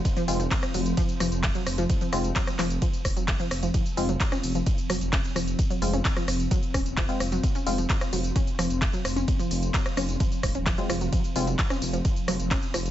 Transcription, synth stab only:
X:1
M:4/4
L:1/16
Q:1/4=130
K:Fphr
V:1 name="Synth stab"
z2 [A,CF] z12 z | z2 [A,CF]2 z12 | z2 [A,CF] z12 z | z2 [A,CF]2 z8 z [A,CF]2 z |
z2 [A,CF] z12 z | z12 z [A,CF]2 z | z2 [A,CF] z12 z |]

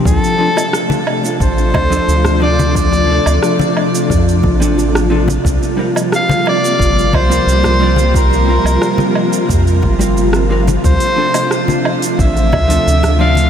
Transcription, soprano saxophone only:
X:1
M:4/4
L:1/8
Q:1/4=89
K:Dm
V:1 name="Soprano saxophone"
A3 z c3 d | d3 z4 z | z2 f d2 c3 | B4 z4 |
c3 z e3 f |]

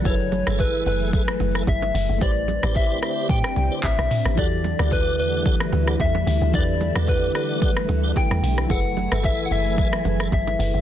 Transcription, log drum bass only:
X:1
M:4/4
L:1/16
Q:"Swing 16ths" 1/4=111
K:Em
V:1 name="Log drum bass" clef=bass
F,,,3 G,,,3 F,,,3 z F,,,2 G,,,2 F,,, F,,, | A,,,3 A,,,3 z2 A,, z C,, z A,,, B,,, z A,,, | E,,3 D,,3 E,,3 z D,,2 E,,2 D,, D,, | E,,3 E,,3 z4 D,,2 z E,, B,,,2 |
F,,,3 G,,,3 F,,,3 z F,,,2 G,,,2 F,,, F,,, |]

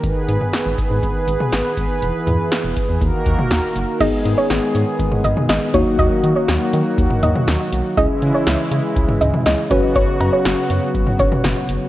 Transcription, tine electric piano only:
X:1
M:4/4
L:1/8
Q:1/4=121
K:G#m
V:1 name="Tine electric piano"
z8 | z8 | [B,DG]6- [B,DG] [A,DF]- | [A,DF]6- [A,DF] z |
[CEG]6- [CEG] [CFB]- | [CFB]6- [CFB] z |]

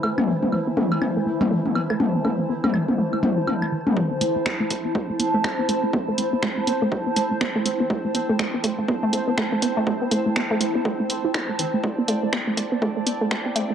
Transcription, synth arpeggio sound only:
X:1
M:4/4
L:1/16
Q:"Swing 16ths" 1/4=122
K:Am
V:1 name="Synth arpeggio sound"
A, A, B, A, A, B, A, A, B, A, A, B, A, A, B, A, | A, B, A, A, B, A, A, B, A, A, z E E A, E, A, | A, B, A, A, B, A, A, B, A, A, B, A, z B, A, A, | B, A, A, B, A, A, B, A, z B, A, A, B, A, A, B, |
A, A, B, A, A, B, A, A, B, A, A, B, A, A, B, A, | A, B, A, A, B, A, A, B, A, A, z E E A, E, A, | A, B, A, A, B, A, A, B, A, A, B, A, A, B, A, A, |]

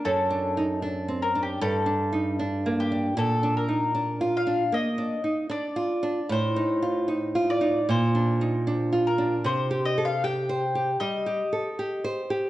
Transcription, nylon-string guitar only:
X:1
M:4/4
L:1/8
Q:1/4=77
K:Bb
V:1 name="Nylon-string guitar"
(3^F,, D E (3D C D (3G,, D E (3D B, D | (3B,, D E (3D F D (3B, D E (3D F D | (3A,, E F (3E F E (3B,, D E (3D F D | (3C, G A (3G c G (3G, G A (3G c G |]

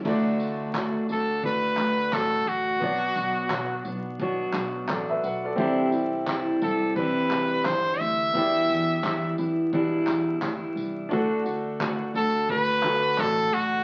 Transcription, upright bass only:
X:1
M:4/4
L:1/16
Q:"Swing 16ths" 1/4=87
K:Dmix
V:1 name="Upright bass" clef=bass
D,,4- D,, z D,,3 z D,,2 A,,,2 A,,,2 | B,,,2 B,,,2 B,,2 B,,,4 B,,,2 A,,,2 B,,,2 | C,,4- C,, z C,,3 z C,,2 G,,,2 D,,2 | E,,2 E,,2 E,2 E,,4 E,,2 D,, z C,,2 |
D,,4- D,, z D,,3 z D,,2 A,,,2 A,,,2 |]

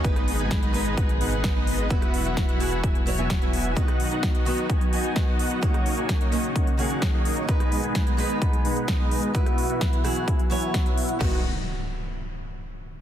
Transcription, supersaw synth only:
X:1
M:4/4
L:1/16
Q:1/4=129
K:B
V:1 name="Supersaw synth"
[G,B,D]3 [G,B,DBg]2 [G,B,DBd]3 [G,B,DBf] z [G,B,DBf]3 [G,B,DBd]3 | [B,EFf]3 [B,EFef]2 [B,EFef]3 [B,EFeg] z2 [B,EFeg] z [B,EFeg]3 | [B,DFdf]3 [B,DFdf]2 [B,DFdf]3 [B,Dd] z [B,DFdg]3 [B,DFdf]3 | [A,DFcd]3 [A,DFcg]2 [A,DFcd]3 [A,DFf] z [A,DFcf]3 [A,DFcd]3 |
[B,DBd]3 [G,B,DBg]2 [G,B,DBd]3 [B,f] z [G,B,DBf]3 [G,B,DBd]3 | [B,Ff]3 [B,EFef]2 [B,EFef]3 [B,E] z [B,EFeg]3 [B,EFef]3 | [B,DFdf]2 z12 z2 |]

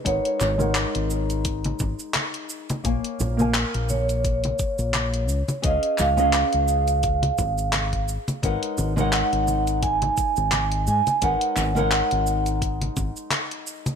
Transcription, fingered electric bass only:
X:1
M:4/4
L:1/16
Q:"Swing 16ths" 1/4=86
K:G#dor
V:1 name="Fingered electric bass" clef=bass
G,,, z G,,,2 z G,,,4 z G,,, z4 z | A,,, z A,,,2 z A,,,4 z2 A,,,3 C,, z | C,, z C,,2 z C,,4 z G,,,4 z2 | G,,, z G,,,2 z G,,,4 z2 G,,,3 G,, z |
G,,, z G,,,2 z G,,,4 z G,,, z4 z |]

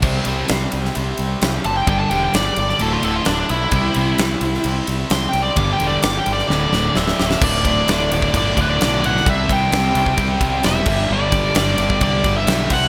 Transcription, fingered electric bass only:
X:1
M:4/4
L:1/8
Q:1/4=130
K:G
V:1 name="Fingered electric bass" clef=bass
C,, C,, C,, C,, C,, C,, C,, F,,, | G,,, E,,, G,,, G,,, D,,, D,,, D,,, B,,, | C,, C,, C,, C,, C,, C,, C,, C,, | G,,, E,,, G,,, G,,, D,,, D,,, D,,, D,,, |
D,,,2 D,,, D,,, G,,, D,,, B,,,2 | C,, C,, C,, C,, C,, C,, E,,, G,,, | G,,,2 G,,, G,,, C,, G,,, B,,, C,, |]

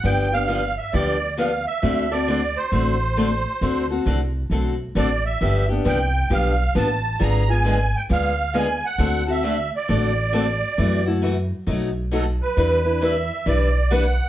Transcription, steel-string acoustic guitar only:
X:1
M:4/4
L:1/8
Q:"Swing" 1/4=134
K:Dmix
V:1 name="Steel-string acoustic guitar"
[D,=F,B,DG] [B,DG] [D,F,B,DG] z [D,F,B,DG] z [D,F,B,DG] z | [D,A,CFA] [CFA] [D,A,CFA] z [D,A,CFA] z [D,A,CFA] z | [D,A,CFA] [CFA] [D,A,CFA] z [D,A,CFA] z [D,A,CFA] z | [D,=F,B,DG] [B,DG] [D,F,B,DG] z [D,F,B,DG] z [D,F,B,DG] z |
[D,^G,B,^E^G] [B,EG] [D,G,B,EG] z [D,G,B,EG] z [D,G,B,EG] z | [D,A,CFA] [CFA] [D,A,CFA] z [D,A,CFA] z [D,A,CFA] z | [C,E,A,EF] [A,EF] [C,E,A,EF] z [B,,F,A,^DF] z [B,,F,A,DF] z | [E,G,DEB] [DEB] [E,G,DEB] z [E,G,DEB] z [E,G,DEB] z |]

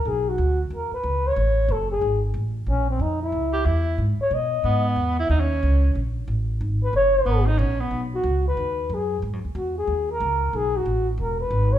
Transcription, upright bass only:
X:1
M:4/4
L:1/8
Q:"Swing" 1/4=183
K:G#m
V:1 name="Upright bass" clef=bass
B,,,2 =D,,2 E,, z C,,2 | =A,,,2 F,,,2 G,,,2 A,,,2 | A,,,2 ^E,,2 C,,2 =E,,2 | G,, z B,,2 G,,2 E,,2 |
D,,2 C,,2 A,,,2 =A,,,2 | G,,,2 F,,,2 G,,,2 A,,,2 | B,,,2 C,,2 D,,2 F,,2 | (3G,, F,, D,, E,,2 D,,2 C,,2 |
B,,,2 =A,,,2 E,,,2 G,,,2 |]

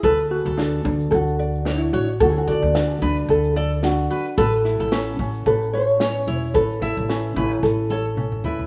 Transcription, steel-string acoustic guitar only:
X:1
M:4/4
L:1/16
Q:"Swing 16ths" 1/4=110
K:Dlyd
V:1 name="Steel-string acoustic guitar"
B z2 A3 z6 c z c z | z2 d z3 B z3 A z3 B z | B z2 A3 z6 c z c z | z2 e z3 B z3 A z3 B z |]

